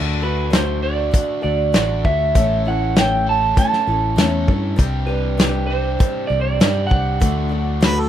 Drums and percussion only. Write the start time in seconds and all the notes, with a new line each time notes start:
0.53 snare, closed hi-hat
1.14 kick, closed hi-hat
1.74 snare, closed hi-hat
2.05 kick
2.35 kick, closed hi-hat
2.96 snare, closed hi-hat
3.57 kick, closed hi-hat
3.73 snare
4.18 snare, closed hi-hat
4.48 kick
4.79 kick, closed hi-hat
5.40 snare, closed hi-hat
6.00 kick, closed hi-hat
6.61 snare, closed hi-hat
6.91 kick
7.21 kick, closed hi-hat
7.82 snare, closed hi-hat